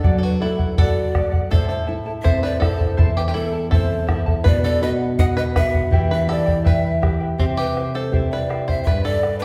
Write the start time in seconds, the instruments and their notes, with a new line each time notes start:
Already playing: five-string banjo A4, pan flute D5
0.03 nylon-string guitar F#3, charango A4 D5 F#5, bombo low
0.18 five-string banjo A4, pan flute D5
0.23 five-string banjo F#4, pan flute B4
0.40 nylon-string guitar A3, five-string banjo E4, charango A4 D5 F#5, pan flute A4
0.59 charango D5 F#5, bombo low
0.78 nylon-string guitar F#4, charango A4 D5 F#5, five-string banjo A4, pan flute D5, bombo low
1.15 nylon-string guitar A3, charango A4 D5 F#5, bombo rim, bombo low
1.32 charango D5 F#5, bombo low
1.51 nylon-string guitar A2, charango E4 A4 C5 E5 A5, five-string banjo A4, pan flute C5, bombo low
1.69 five-string banjo A4, pan flute C5
1.86 charango E4 A4 E5 A5, nylon-string guitar E4
2.06 charango E4 A4 A5
2.22 nylon-string guitar C4, charango E4 A4 C5 E5 A5, five-string banjo C5, pan flute E5, bombo low
2.43 five-string banjo B4, pan flute D5
2.60 charango E4 A4 E5 A5, nylon-string guitar E4, five-string banjo A4, pan flute C5, bombo rim, bombo low
2.78 charango E4 A4 A5, bombo low
2.97 nylon-string guitar E2, charango E4 A4 C5 E5 A5, bombo low
3.17 five-string banjo G4, pan flute B4
3.28 five-string banjo G4, pan flute B4
3.34 five-string banjo E4, charango E4 A4 E5 A5, nylon-string guitar E4, pan flute A4
3.52 charango E4 A4 A5
3.71 nylon-string guitar C4, charango E4 A4 C5 E5 A5, five-string banjo A4, pan flute C5, bombo low
4.07 charango E4 A4 E5 A5, nylon-string guitar E4, bombo rim, bombo low
4.26 charango E4 A4 A5, bombo low
4.44 nylon-string guitar B2, charango B4 D#5 F#5, five-string banjo B4, pan flute D5, bombo low
4.64 five-string banjo A4, pan flute D5
4.82 nylon-string guitar F#4, charango B4 D#5 F#5, five-string banjo B4, pan flute D#5
4.99 charango D#5 F#5
5.18 nylon-string guitar D#4, charango B4 D#5 F#5, five-string banjo D#5, pan flute F#5, bombo low
5.37 five-string banjo B4, pan flute D#5
5.56 nylon-string guitar F#4, charango B4 D#5 F#5, five-string banjo B4, pan flute E5, bombo rim, bombo low
5.74 charango D#5 F#5, bombo low
5.91 nylon-string guitar E3, charango E4 G4 B4 E5 G5, bombo low
6.11 five-string banjo B4, pan flute E5
6.27 charango E4 B4 E5 G5, nylon-string guitar G4, five-string banjo A4, pan flute D5, bombo rim
6.46 charango E4 B4 G5, bombo low
6.64 charango E4 G4 B4 E5 G5, nylon-string guitar E4, five-string banjo B4, pan flute E5, bombo low
7.01 charango E4 B4 E5 G5, nylon-string guitar G4, bombo rim, bombo low
7.20 charango E4 B4 G5
7.38 nylon-string guitar C3, five-string banjo C4, charango E4 G4 C5 E5 G5, pan flute G4, bombo low
7.57 five-string banjo G4, pan flute B4
7.75 charango E4 C5 E5 G5, bombo rim
7.94 charango E4 C5 G5, five-string banjo A4, pan flute C5
8.11 nylon-string guitar C4 E4 G4, charango E4 G4 C5 E5 G5, bombo low
8.31 five-string banjo B4, pan flute D5
8.49 charango E4 C5 E5 G5, bombo rim
8.67 charango E4 C5 G5, five-string banjo C5, pan flute E5, bombo low
8.84 nylon-string guitar G2, charango G4 B4 D5 G5, five-string banjo B4, pan flute E5, bombo low
8.88 charango B5
9.04 five-string banjo A4, pan flute D5
9.22 charango B4 D5 G5 B5, bombo rim
9.39 pan flute B4, charango B5